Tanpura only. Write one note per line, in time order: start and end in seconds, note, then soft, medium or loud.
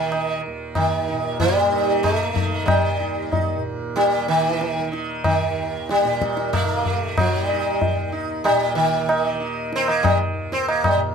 0.00 0.46 D#2 medium
0.00 1.10 A#2 medium
0.00 1.73 D#3 medium
0.47 2.96 D#2 medium
1.11 3.56 A#2 medium
1.73 2.34 D#3 medium
2.34 4.17 D#3 medium
2.96 5.41 D#2 soft
3.56 6.03 A#2 medium
4.17 4.79 D#3 medium
4.79 6.65 D#3 medium
5.42 7.87 D#2 medium
6.04 8.48 A#2 medium
6.65 7.26 D#3 medium
7.26 9.09 D#3 medium
7.88 10.33 D#2 medium
8.48 10.94 A#2 medium
9.09 9.72 D#3 medium
9.72 11.15 D#3 medium
10.34 11.15 D#2 medium
10.94 11.15 A#2 medium